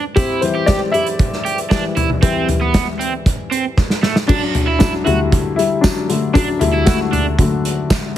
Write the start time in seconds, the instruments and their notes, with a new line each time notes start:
0.16 grand piano C4 G4, overdriven electric guitar E4, kick, closed hi-hat
0.41 grand piano E3 G3 E4 C5, closed hi-hat
0.55 overdriven electric guitar G4
0.66 grand piano G4 D5, kick, snare, closed hi-hat
0.92 overdriven electric guitar E4, grand piano G4 E5, closed hi-hat
1.06 closed hi-hat
1.19 kick, closed hi-hat
1.33 snare
1.45 overdriven electric guitar G4, closed hi-hat
1.58 closed hi-hat
1.70 grand piano E3 G3 E4, overdriven electric guitar D4, kick, snare, closed hi-hat
1.97 overdriven electric guitar E4, closed hi-hat, floor tom
2.10 floor tom
2.22 grand piano E3 G3 E4, overdriven electric guitar C4, kick, closed hi-hat
2.49 closed hi-hat, floor tom
2.61 overdriven electric guitar B3
2.74 kick, snare, closed hi-hat
2.99 overdriven electric guitar C4, closed hi-hat
3.26 kick, closed hi-hat
3.51 overdriven electric guitar C4, closed hi-hat
3.77 kick, snare
3.90 snare
4.03 overdriven electric guitar A3, snare
4.16 snare
4.27 grand piano F#3 D4, overdriven electric guitar D4, kick, crash
4.55 closed hi-hat, floor tom
4.67 overdriven electric guitar E4
4.79 grand piano F#3 D4, kick, snare, closed hi-hat, tambourine
5.04 grand piano D3 F#3 G3 A3 E4, overdriven electric guitar F#4, closed hi-hat, floor tom
5.32 kick, closed hi-hat
5.56 grand piano G3 E4, closed hi-hat
5.81 grand piano F#3 D4, kick, snare, closed hi-hat, tambourine
6.09 grand piano D3 F#3 A3, closed hi-hat
6.34 grand piano F#3 D4, overdriven electric guitar D4, kick, closed hi-hat
6.59 grand piano D3 F#3 G3 A3 E4, closed hi-hat, floor tom
6.74 overdriven electric guitar E4
6.86 grand piano A3 F#4, kick, snare, closed hi-hat, tambourine
7.13 overdriven electric guitar D4, closed hi-hat, floor tom
7.39 grand piano D3 F#3 A3, kick, closed hi-hat
7.65 closed hi-hat
7.90 kick, snare, closed hi-hat, tambourine